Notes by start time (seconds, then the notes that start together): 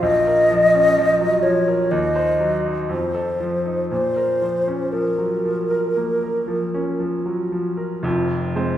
0.02 A#1 D#5
0.27 A#4
0.51 F3
0.75 C#4
0.98 F3
1.21 F#3
1.43 F3 C#5
1.68 A#4
1.91 D#2 D#5
2.16 C5
2.40 F#3
2.66 D#4
2.89 F2 C5
3.14 A4
3.40 F3
3.66 D#4
3.90 A#2 C5
4.16 A#4
4.42 F3
4.67 C#4
4.92 F3 A#4
5.18 F#3
5.45 F3
5.71 A#4
5.97 A#3
6.23 A#4
6.48 F3
6.75 C#4
7.00 F3
7.26 F#3
7.52 F3
7.77 A#4
8.03 F1 F2
8.56 G#3 C4 C5